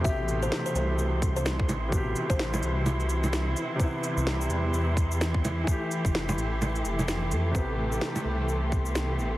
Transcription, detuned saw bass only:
X:1
M:4/4
L:1/16
Q:"Swing 16ths" 1/4=128
K:Am
V:1 name="Detuned saw bass" clef=bass
A,,,4 z2 C,,8 A,,,2- | A,,,2 z A,,,3 C,,8 z2 | z3 C,,3 E,,2 E,,8 | z3 F,,,3 A,,,4 F,,,4 F,,2 |
A,,,4 z2 C,,8 A,,,2 |]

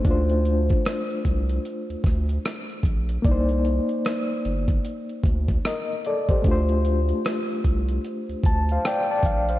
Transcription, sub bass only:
X:1
M:4/4
L:1/16
Q:"Swing 16ths" 1/4=75
K:Dphr
V:1 name="Sub bass" clef=bass
D,,4 z2 C,,2 z D,, D,,2 z2 B,,,2 | C,,3 z3 G,,,2 z2 D,,2 z4 | D,,4 z2 C,,2 z D,, D,,2 z2 B,,,2 |]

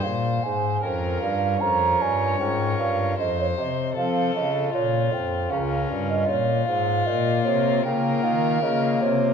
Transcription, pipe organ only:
X:1
M:4/4
L:1/8
Q:1/4=77
K:Bbdor
V:1 name="Pipe organ"
z2 [DFB]2 [DFB]2 [DFB]2 | z2 [CF=A]2 z2 [DFB]2 | z2 [B,FB]2 [B,FB]2 [B,FB]2 |]
V:2 name="Pipe organ" clef=bass
B,, A,, F,, G,, F,, G,, A,, G,, | F,, C, F, D, B,, F,, D,, G,, | B,, A,, B,, C, D, E, D, C, |]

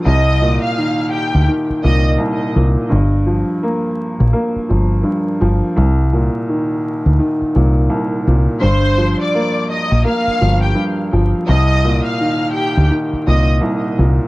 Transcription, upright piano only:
X:1
M:4/4
L:1/8
Q:"Swing 16ths" 1/4=84
K:Cdor
V:1 name="Upright piano" clef=bass
C,, B,, E,2 E, B,, C,, B,, | G,, F, B,2 B, F, G,, F, | C,, B,, E,2 E, B,, C,, B,, | G,, F, B,2 B, F, G,, F, |
C,, B,, E,2 E, B,, C,, B,, |]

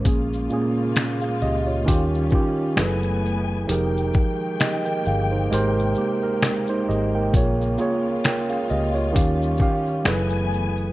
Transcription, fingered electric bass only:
X:1
M:4/4
L:1/8
Q:"Swing 16ths" 1/4=66
K:Bbdor
V:1 name="Fingered electric bass" clef=bass
B,,, z2 D,, E,, z _G,,,2 | F,,, z2 G,,, A,,, z2 A,,, | B,,, z2 D,, E,, z _G,,,2 |]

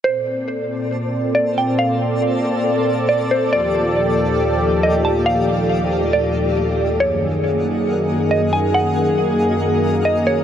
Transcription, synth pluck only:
X:1
M:4/4
L:1/8
Q:1/4=138
K:Bb
V:1 name="Synth pluck"
c6 d g | f6 d c | d6 e a | f4 d2 z2 |
_d6 e _a | _g6 e _d |]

